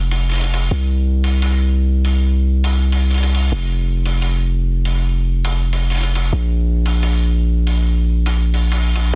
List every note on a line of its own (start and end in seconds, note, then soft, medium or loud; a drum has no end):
0.00 0.70 F1 medium
0.11 open hi-hat soft
0.29 open hi-hat soft
0.31 open hi-hat soft
0.33 open hi-hat soft
0.35 open hi-hat soft
0.38 open hi-hat soft
0.41 open hi-hat medium
0.44 open hi-hat medium
0.54 open hi-hat medium
0.71 3.51 C2 medium
1.24 open hi-hat medium
1.42 open hi-hat medium
2.05 open hi-hat soft
2.64 open hi-hat medium
2.92 open hi-hat soft
3.11 open hi-hat soft
3.14 open hi-hat soft
3.18 open hi-hat medium
3.23 open hi-hat medium
3.35 open hi-hat medium
3.52 6.31 F1 medium
4.06 open hi-hat medium
4.22 open hi-hat medium
4.85 open hi-hat soft
5.45 open hi-hat medium
5.73 open hi-hat medium
5.90 open hi-hat soft
5.95 open hi-hat soft
5.97 open hi-hat medium
6.01 open hi-hat medium
6.03 open hi-hat medium
6.15 open hi-hat medium
6.33 9.12 A#1 medium
6.86 open hi-hat medium
7.03 open hi-hat medium
7.67 open hi-hat medium
8.26 open hi-hat medium
8.54 open hi-hat medium
8.72 open hi-hat medium
8.96 open hi-hat medium